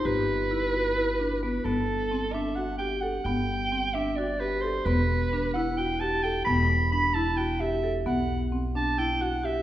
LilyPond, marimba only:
\new Staff \with { instrumentName = "Marimba" } { \time 7/8 \key g \major \tempo 4 = 131 g'4 e'8 fis'8 e'8 d'8 b8 | b4 c'8 d'8 fis'8 g'8 a'8 | b4 c'8 d'8 fis'8 g'8 a'8 | b4 d'8 e'8 fis'8 g'8 a'8 |
b4 d'8 e'8 fis'8 g'8 a'8 | b4 c'8 d'8 e'8 fis'8 g'8 | }